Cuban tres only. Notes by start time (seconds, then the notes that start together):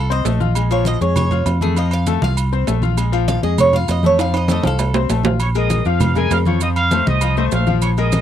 Already playing: A4
0.12 D#5
0.72 C#5
0.87 D#5
1.02 C#5
1.17 C#5
1.62 G#4
1.78 D#5
1.93 F5
2.24 F5
3.28 F5
3.43 D#5
3.60 C#5
3.76 F5
3.91 D#5
4.06 C#5
4.21 F5
4.37 D#5
4.51 D#5
4.67 A4